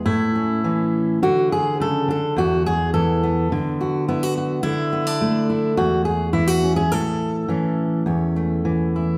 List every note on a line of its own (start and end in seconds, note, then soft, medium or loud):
0.00 0.06 E4 soft
0.05 1.22 A2 medium
0.05 1.22 E4 medium
0.35 0.64 C#4 soft
0.64 1.19 E3 medium
0.64 1.19 C#4 soft
1.22 2.07 D3 medium
1.22 1.51 F#4 medium
1.52 1.80 G#4 medium
1.80 2.09 C#3 medium
1.80 2.09 A4 medium
2.08 2.37 D3 medium
2.08 2.38 A4 medium
2.36 3.51 E2 medium
2.36 2.66 F#4 medium
2.66 2.93 G#4 loud
2.94 3.48 E3 medium
2.94 3.51 A4 medium
3.23 4.07 B3 soft
3.52 4.63 D3 medium
3.81 4.08 F#4 medium
4.08 4.61 B3 medium
4.08 4.23 E4 medium
4.23 4.36 F#4 medium
4.38 4.62 F#4 medium
4.63 5.77 D3 medium
4.63 5.48 E4 loud
4.92 5.07 B3 soft
5.07 5.77 D4 soft
5.21 5.74 A3 medium
5.50 5.77 E4 soft
5.77 6.91 E2 medium
5.77 6.05 F#4 medium
6.05 6.33 G#4 medium
6.33 7.48 E3 medium
6.33 6.47 E4 medium
6.47 6.76 F#4 medium
6.63 6.88 C#4 soft
6.76 6.92 G#4 medium
6.92 8.06 A2 medium
6.92 8.95 A4 loud
7.48 8.64 E3 medium
7.48 8.06 C#4 soft
8.06 9.18 E2 medium
8.06 9.18 C#4 soft
8.36 9.18 A3 soft
8.65 9.18 E3 medium
8.96 9.18 E4 soft